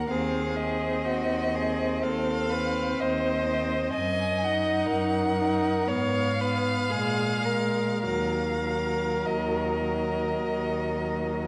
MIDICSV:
0, 0, Header, 1, 5, 480
1, 0, Start_track
1, 0, Key_signature, -6, "minor"
1, 0, Tempo, 961538
1, 52, Time_signature, 4, 2, 24, 8
1, 2452, Tempo, 977199
1, 2932, Tempo, 1027397
1, 3412, Tempo, 1160542
1, 5296, End_track
2, 0, Start_track
2, 0, Title_t, "Violin"
2, 0, Program_c, 0, 40
2, 50, Note_on_c, 0, 77, 49
2, 282, Note_on_c, 0, 75, 56
2, 289, Note_off_c, 0, 77, 0
2, 1013, Note_on_c, 0, 77, 60
2, 1020, Note_off_c, 0, 75, 0
2, 1497, Note_on_c, 0, 75, 55
2, 1505, Note_off_c, 0, 77, 0
2, 1965, Note_off_c, 0, 75, 0
2, 1968, Note_on_c, 0, 80, 62
2, 2216, Note_on_c, 0, 78, 58
2, 2224, Note_off_c, 0, 80, 0
2, 2930, Note_on_c, 0, 77, 74
2, 2937, Note_off_c, 0, 78, 0
2, 3882, Note_off_c, 0, 77, 0
2, 3884, Note_on_c, 0, 77, 56
2, 4379, Note_on_c, 0, 75, 43
2, 4386, Note_off_c, 0, 77, 0
2, 5296, Note_off_c, 0, 75, 0
2, 5296, End_track
3, 0, Start_track
3, 0, Title_t, "Violin"
3, 0, Program_c, 1, 40
3, 0, Note_on_c, 1, 70, 38
3, 52, Note_on_c, 1, 68, 36
3, 59, Note_off_c, 1, 70, 0
3, 526, Note_on_c, 1, 66, 34
3, 534, Note_off_c, 1, 68, 0
3, 775, Note_on_c, 1, 68, 34
3, 783, Note_off_c, 1, 66, 0
3, 1015, Note_off_c, 1, 68, 0
3, 1018, Note_on_c, 1, 69, 38
3, 1249, Note_on_c, 1, 71, 41
3, 1257, Note_off_c, 1, 69, 0
3, 1501, Note_on_c, 1, 72, 43
3, 1508, Note_off_c, 1, 71, 0
3, 1971, Note_off_c, 1, 72, 0
3, 1974, Note_on_c, 1, 75, 47
3, 2442, Note_off_c, 1, 75, 0
3, 2453, Note_on_c, 1, 70, 46
3, 2928, Note_on_c, 1, 73, 54
3, 2935, Note_off_c, 1, 70, 0
3, 3174, Note_on_c, 1, 71, 42
3, 3181, Note_off_c, 1, 73, 0
3, 3404, Note_on_c, 1, 68, 41
3, 3411, Note_off_c, 1, 71, 0
3, 3633, Note_on_c, 1, 70, 40
3, 3640, Note_off_c, 1, 68, 0
3, 3879, Note_off_c, 1, 70, 0
3, 3885, Note_on_c, 1, 70, 42
3, 5296, Note_off_c, 1, 70, 0
3, 5296, End_track
4, 0, Start_track
4, 0, Title_t, "Viola"
4, 0, Program_c, 2, 41
4, 55, Note_on_c, 2, 60, 29
4, 288, Note_off_c, 2, 60, 0
4, 299, Note_on_c, 2, 60, 32
4, 767, Note_off_c, 2, 60, 0
4, 781, Note_on_c, 2, 60, 34
4, 1255, Note_off_c, 2, 60, 0
4, 1263, Note_on_c, 2, 60, 35
4, 1728, Note_off_c, 2, 60, 0
4, 1733, Note_on_c, 2, 60, 37
4, 1967, Note_off_c, 2, 60, 0
4, 2214, Note_on_c, 2, 63, 37
4, 2679, Note_off_c, 2, 63, 0
4, 2693, Note_on_c, 2, 63, 40
4, 2928, Note_off_c, 2, 63, 0
4, 2931, Note_on_c, 2, 59, 35
4, 3163, Note_off_c, 2, 59, 0
4, 3171, Note_on_c, 2, 59, 35
4, 3408, Note_off_c, 2, 59, 0
4, 3416, Note_on_c, 2, 56, 37
4, 3637, Note_off_c, 2, 56, 0
4, 3640, Note_on_c, 2, 56, 34
4, 3878, Note_off_c, 2, 56, 0
4, 3880, Note_on_c, 2, 54, 31
4, 4124, Note_off_c, 2, 54, 0
4, 4129, Note_on_c, 2, 54, 33
4, 4609, Note_off_c, 2, 54, 0
4, 4623, Note_on_c, 2, 54, 33
4, 5090, Note_off_c, 2, 54, 0
4, 5103, Note_on_c, 2, 54, 30
4, 5296, Note_off_c, 2, 54, 0
4, 5296, End_track
5, 0, Start_track
5, 0, Title_t, "Cello"
5, 0, Program_c, 3, 42
5, 49, Note_on_c, 3, 39, 38
5, 474, Note_off_c, 3, 39, 0
5, 534, Note_on_c, 3, 39, 41
5, 960, Note_off_c, 3, 39, 0
5, 1019, Note_on_c, 3, 39, 41
5, 1445, Note_off_c, 3, 39, 0
5, 1497, Note_on_c, 3, 39, 41
5, 1916, Note_off_c, 3, 39, 0
5, 1973, Note_on_c, 3, 42, 45
5, 2395, Note_off_c, 3, 42, 0
5, 2451, Note_on_c, 3, 42, 44
5, 2873, Note_off_c, 3, 42, 0
5, 2932, Note_on_c, 3, 44, 46
5, 3354, Note_off_c, 3, 44, 0
5, 3410, Note_on_c, 3, 46, 42
5, 3823, Note_off_c, 3, 46, 0
5, 3883, Note_on_c, 3, 39, 41
5, 4317, Note_off_c, 3, 39, 0
5, 4376, Note_on_c, 3, 39, 40
5, 4805, Note_off_c, 3, 39, 0
5, 4865, Note_on_c, 3, 39, 37
5, 5278, Note_off_c, 3, 39, 0
5, 5296, End_track
0, 0, End_of_file